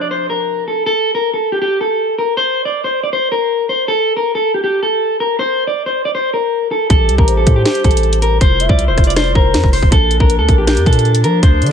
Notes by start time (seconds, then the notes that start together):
Already playing: C3 F3 D4
0.01 D5
0.11 C5
0.30 A#4
0.68 A4
0.86 A4
1.15 A#4
1.34 A4
1.52 G4
1.62 G4
1.81 A4
2.18 A#4
2.37 C5
2.65 D5
2.84 C5
3.03 D5
3.13 C5
3.32 A#4
3.69 C5
3.88 A4
4.17 A#4
4.35 A4
4.54 G4
4.64 G4
4.83 A4
5.20 A#4
5.39 C5
5.67 D5
5.86 C5
6.05 D5
6.15 C5
6.34 A#4
6.71 A4
6.90 A1 C3 G3 G4 A4, kick, closed hi-hat
7.09 C2, closed hi-hat
7.18 A1 A#4, kick
7.28 C5, closed hi-hat
7.37 A4
7.47 A2, kick, closed hi-hat
7.56 G4
7.65 G4, snare, closed hi-hat
7.75 closed hi-hat
7.84 A1 A4, kick, closed hi-hat
7.91 closed hi-hat
7.97 closed hi-hat
8.03 closed hi-hat
8.13 closed hi-hat
8.22 A#4, closed hi-hat
8.41 F1 E4 F4 C5, kick, closed hi-hat
8.60 E5, closed hi-hat
8.69 C2 D5, kick
8.79 closed hi-hat
8.88 E1 C5
8.98 F1, kick, cross-stick, closed hi-hat
9.04 D5, closed hi-hat
9.10 closed hi-hat
9.16 C5 D5, cross-stick, snare, closed hi-hat
9.35 F1 A#4 C5, kick
9.54 F2, snare, closed hi-hat
9.64 F1, kick
9.73 C5, open hi-hat
9.83 F1, kick
9.92 A#1 A#2 A#3 D4 A4, kick, closed hi-hat
10.11 closed hi-hat
10.20 A#1 A#4, kick
10.30 A#4, closed hi-hat
10.39 D2 A4
10.49 A#1, kick, closed hi-hat
10.58 G4
10.67 G4, snare, closed hi-hat
10.77 F2, closed hi-hat
10.86 A#2 A4, kick, closed hi-hat
10.93 closed hi-hat
10.99 closed hi-hat
11.05 closed hi-hat
11.15 closed hi-hat
11.24 F3 A#4, closed hi-hat
11.43 D2 C3 F3 C5, kick, closed hi-hat
11.62 D3 D5, closed hi-hat
11.66 closed hi-hat